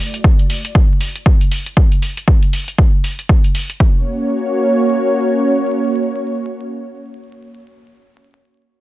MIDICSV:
0, 0, Header, 1, 3, 480
1, 0, Start_track
1, 0, Tempo, 508475
1, 1669, Time_signature, 4, 2, 24, 8
1, 8314, End_track
2, 0, Start_track
2, 0, Title_t, "Analog synth pad"
2, 0, Program_c, 0, 89
2, 0, Note_on_c, 0, 57, 77
2, 0, Note_on_c, 0, 64, 73
2, 0, Note_on_c, 0, 66, 74
2, 0, Note_on_c, 0, 74, 84
2, 1631, Note_off_c, 0, 64, 0
2, 1650, Note_off_c, 0, 57, 0
2, 1650, Note_off_c, 0, 66, 0
2, 1650, Note_off_c, 0, 74, 0
2, 3588, Note_on_c, 0, 61, 72
2, 3588, Note_on_c, 0, 66, 69
2, 3588, Note_on_c, 0, 73, 82
2, 3589, Note_on_c, 0, 58, 76
2, 7220, Note_off_c, 0, 61, 0
2, 7220, Note_off_c, 0, 66, 0
2, 7220, Note_off_c, 0, 73, 0
2, 7221, Note_off_c, 0, 58, 0
2, 8314, End_track
3, 0, Start_track
3, 0, Title_t, "Drums"
3, 131, Note_on_c, 9, 42, 57
3, 225, Note_off_c, 9, 42, 0
3, 229, Note_on_c, 9, 36, 120
3, 324, Note_off_c, 9, 36, 0
3, 370, Note_on_c, 9, 42, 32
3, 465, Note_off_c, 9, 42, 0
3, 471, Note_on_c, 9, 46, 96
3, 565, Note_off_c, 9, 46, 0
3, 611, Note_on_c, 9, 42, 63
3, 705, Note_off_c, 9, 42, 0
3, 709, Note_on_c, 9, 36, 112
3, 803, Note_off_c, 9, 36, 0
3, 950, Note_on_c, 9, 46, 99
3, 1044, Note_off_c, 9, 46, 0
3, 1091, Note_on_c, 9, 42, 55
3, 1185, Note_off_c, 9, 42, 0
3, 1189, Note_on_c, 9, 36, 118
3, 1283, Note_off_c, 9, 36, 0
3, 1331, Note_on_c, 9, 42, 46
3, 1425, Note_off_c, 9, 42, 0
3, 1430, Note_on_c, 9, 46, 100
3, 1524, Note_off_c, 9, 46, 0
3, 1570, Note_on_c, 9, 42, 59
3, 1665, Note_off_c, 9, 42, 0
3, 1669, Note_on_c, 9, 36, 113
3, 1763, Note_off_c, 9, 36, 0
3, 1810, Note_on_c, 9, 42, 44
3, 1905, Note_off_c, 9, 42, 0
3, 1910, Note_on_c, 9, 46, 98
3, 2004, Note_off_c, 9, 46, 0
3, 2051, Note_on_c, 9, 42, 54
3, 2145, Note_off_c, 9, 42, 0
3, 2149, Note_on_c, 9, 36, 110
3, 2243, Note_off_c, 9, 36, 0
3, 2290, Note_on_c, 9, 42, 33
3, 2384, Note_off_c, 9, 42, 0
3, 2390, Note_on_c, 9, 46, 95
3, 2485, Note_off_c, 9, 46, 0
3, 2530, Note_on_c, 9, 42, 59
3, 2624, Note_off_c, 9, 42, 0
3, 2629, Note_on_c, 9, 36, 108
3, 2723, Note_off_c, 9, 36, 0
3, 2870, Note_on_c, 9, 46, 97
3, 2964, Note_off_c, 9, 46, 0
3, 3010, Note_on_c, 9, 42, 54
3, 3104, Note_off_c, 9, 42, 0
3, 3109, Note_on_c, 9, 36, 114
3, 3203, Note_off_c, 9, 36, 0
3, 3249, Note_on_c, 9, 42, 43
3, 3344, Note_off_c, 9, 42, 0
3, 3349, Note_on_c, 9, 46, 99
3, 3443, Note_off_c, 9, 46, 0
3, 3489, Note_on_c, 9, 42, 56
3, 3583, Note_off_c, 9, 42, 0
3, 3588, Note_on_c, 9, 36, 96
3, 3683, Note_off_c, 9, 36, 0
3, 8314, End_track
0, 0, End_of_file